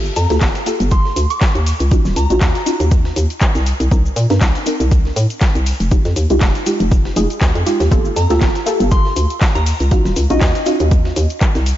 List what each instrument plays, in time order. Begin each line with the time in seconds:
Already playing: fm bass G1, synth stab A#3 F4 G4 A4
0.05 cabasa
0.16 fm bass F2, synth bell A#5, closed hi-hat, open hi-hat, cabasa
0.30 fm bass D2, synth stab A#3 F4 G4 A4, snare, closed hi-hat, cabasa
0.41 fm bass G1, kick, snare, clap, closed hi-hat, cabasa
0.55 snare, closed hi-hat, cabasa
0.66 synth stab A#3 F4 G4 A4, closed hi-hat, open hi-hat, cabasa
0.80 fm bass G1, closed hi-hat, cabasa
0.91 synth bell C6, kick, closed hi-hat, cabasa
1.05 snare
1.16 fm bass D2, closed hi-hat, open hi-hat, cabasa
1.30 synth bell D6, closed hi-hat, cabasa
1.41 kick, snare, clap, closed hi-hat, cabasa
1.55 fm bass D#2, closed hi-hat, cabasa
1.66 open hi-hat, cabasa
1.80 fm bass C#2, closed hi-hat, cabasa
1.91 synth stab C#4 D#4 F4 F#4, kick, closed hi-hat, cabasa
2.05 fm bass D#1, snare, cabasa
2.16 fm bass C#2, synth bell A#5, closed hi-hat, open hi-hat, cabasa
2.30 fm bass A#1, synth stab C#4 D#4 F4 F#4, closed hi-hat, cabasa
2.41 fm bass D#2, kick, snare, clap, closed hi-hat, cabasa
2.55 snare, closed hi-hat, cabasa
2.66 synth stab C#4 D#4 F4 F#4, closed hi-hat, open hi-hat, cabasa
2.80 fm bass D#2, closed hi-hat, cabasa
2.91 kick, closed hi-hat, cabasa
3.05 snare
3.16 fm bass D#2, closed hi-hat, open hi-hat, cabasa
3.30 closed hi-hat, cabasa
3.41 kick, clap, closed hi-hat, cabasa
3.55 fm bass C2, snare, closed hi-hat, cabasa
3.66 closed hi-hat, open hi-hat, cabasa
3.80 fm bass C2, closed hi-hat, cabasa
3.91 fm bass C2, synth stab C4 D4 D#4 A#4, kick, closed hi-hat, cabasa
4.06 cabasa
4.16 fm bass A#2, closed hi-hat, open hi-hat, cabasa
4.30 fm bass G2, synth stab C4 D4 D#4 A#4, snare, closed hi-hat, cabasa
4.41 fm bass C2, kick, snare, clap, closed hi-hat, cabasa
4.55 snare, closed hi-hat, cabasa
4.66 synth stab C4 D4 D#4 A#4, closed hi-hat, open hi-hat, cabasa
4.80 fm bass C2, closed hi-hat, cabasa
4.91 kick, closed hi-hat, cabasa
5.05 snare
5.16 fm bass A2, closed hi-hat, open hi-hat, cabasa
5.30 closed hi-hat, cabasa
5.41 kick, snare, clap, closed hi-hat, cabasa
5.55 fm bass C2, closed hi-hat, cabasa
5.66 open hi-hat, cabasa
5.80 fm bass F1, closed hi-hat, cabasa
5.91 synth stab G#3 D#4 F4 G4, kick, closed hi-hat, cabasa
6.05 fm bass F2, snare, closed hi-hat, cabasa
6.16 fm bass D#2, closed hi-hat, open hi-hat, cabasa
6.30 fm bass C2, synth stab G#3 D#4 F4 G4, closed hi-hat, cabasa
6.41 fm bass F1, kick, snare, clap, closed hi-hat, cabasa
6.55 snare, closed hi-hat, cabasa
6.66 synth stab G#3 D#4 F4 G4, closed hi-hat, open hi-hat, cabasa
6.80 fm bass F1, closed hi-hat, cabasa
6.91 kick, closed hi-hat, cabasa
7.05 snare
7.16 fm bass F1, synth stab G#3 D#4 F4 G#4, closed hi-hat, open hi-hat, cabasa
7.30 closed hi-hat, cabasa
7.41 fm bass D2, kick, snare, clap, closed hi-hat, cabasa
7.55 fm bass F2, closed hi-hat, cabasa
7.66 synth stab G#3 D#4 F4 G4, closed hi-hat, open hi-hat, cabasa
7.80 fm bass D#2, snare, closed hi-hat, cabasa
7.91 fm bass G1, synth stab A#3 F4 G4 A4, kick, closed hi-hat, cabasa
8.05 cabasa
8.16 fm bass F2, synth bell A#5, closed hi-hat, open hi-hat, cabasa
8.30 fm bass D2, synth stab A#3 F4 G4 A4, snare, closed hi-hat, cabasa
8.41 fm bass G1, kick, snare, clap, closed hi-hat, cabasa
8.55 snare, closed hi-hat, cabasa
8.66 synth stab A#3 F4 G4 A4, closed hi-hat, open hi-hat, cabasa
8.80 fm bass G1, closed hi-hat, cabasa
8.91 synth bell C6, kick, closed hi-hat, cabasa
9.05 snare
9.16 fm bass D2, closed hi-hat, open hi-hat, cabasa
9.30 closed hi-hat, cabasa
9.41 kick, snare, clap, closed hi-hat, cabasa
9.55 fm bass D#2, synth bell A#5, closed hi-hat, cabasa
9.66 open hi-hat, cabasa
9.80 fm bass C#2, closed hi-hat, cabasa
9.91 synth stab C#4 D#4 F4 F#4, kick, closed hi-hat, cabasa
10.05 fm bass D#1, snare, cabasa
10.16 fm bass C#2, closed hi-hat, open hi-hat, cabasa
10.30 fm bass A#1, synth stab C#4 D#4 F4 F#4, synth bell D#5, closed hi-hat, cabasa
10.41 fm bass D#2, kick, snare, clap, closed hi-hat, cabasa
10.55 snare, closed hi-hat, cabasa
10.66 synth stab C#4 D#4 F4 F#4, closed hi-hat, open hi-hat, cabasa
10.80 fm bass D#2, closed hi-hat, cabasa
10.91 kick, closed hi-hat, cabasa
11.05 snare
11.16 fm bass D#2, closed hi-hat, open hi-hat, cabasa
11.30 closed hi-hat, cabasa
11.41 kick, clap, closed hi-hat, cabasa
11.55 fm bass C2, snare, closed hi-hat, cabasa
11.66 closed hi-hat, open hi-hat, cabasa